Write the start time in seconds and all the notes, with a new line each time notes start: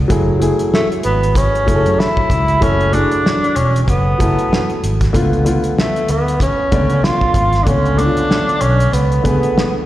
Already playing: F3 B3 D4 A4
0.08 F#1 F#3 A3 E4 G#4, kick, closed hi-hat
0.39 F#3 A3 E4 G#4, closed hi-hat
0.59 muted fingered electric bass stroke, closed hi-hat
0.74 A3, snare
0.92 closed hi-hat
1.03 G#1 B3, closed hi-hat
1.23 closed hi-hat
1.35 C#4, kick, closed hi-hat
1.55 closed hi-hat
1.66 F#1 F#3 A3 E4 G#4, kick, closed hi-hat
1.75 A4
1.86 F#2, closed hi-hat
1.99 E4, snare
2.17 kick
2.30 C#2, kick, closed hi-hat
2.48 closed hi-hat
2.60 F#1 F#3 A3 C#4 E4 A4, kick, closed hi-hat
2.80 closed hi-hat
2.92 F#3 A3 D4 E4 G#4, closed hi-hat
3.11 muted fingered electric bass stroke, closed hi-hat
3.26 snare
3.44 closed hi-hat
3.56 E1 C#4, closed hi-hat
3.76 closed hi-hat
3.83 C#4
3.88 F#1 B3, kick, closed hi-hat
4.18 F#1 F#3 A3 E4 A4, kick, closed hi-hat
4.39 closed hi-hat
4.53 snare
4.70 closed hi-hat
4.83 G#1, closed hi-hat
5.01 kick, snare, closed hi-hat
5.13 C#2 D3 A3 B3 F4, kick, closed hi-hat
5.33 closed hi-hat
5.44 D3 A3 B3 F4, closed hi-hat
5.64 muted fingered electric bass stroke, closed hi-hat
5.79 A3, snare
5.96 closed hi-hat
6.08 D2 B3, closed hi-hat
6.28 closed hi-hat
6.40 C#4, kick, closed hi-hat
6.71 C#2 D3 A3 B3 D5, kick, closed hi-hat
6.90 C#3, closed hi-hat
7.04 F4, snare
7.21 kick
7.34 G#1, kick, closed hi-hat
7.53 snare, closed hi-hat
7.64 C#2 D3 A3 B3 D4, kick, closed hi-hat
7.68 C#4
7.86 closed hi-hat
7.97 D3 A3 B3 D4, closed hi-hat
8.06 F4
8.17 muted fingered electric bass stroke, closed hi-hat
8.31 snare
8.49 closed hi-hat
8.61 B1 C#4, closed hi-hat
8.80 closed hi-hat
8.93 C#2 B3, closed hi-hat
9.12 closed hi-hat
9.23 C#2 D3 A3 B3 G#4, kick, closed hi-hat
9.43 closed hi-hat
9.58 snare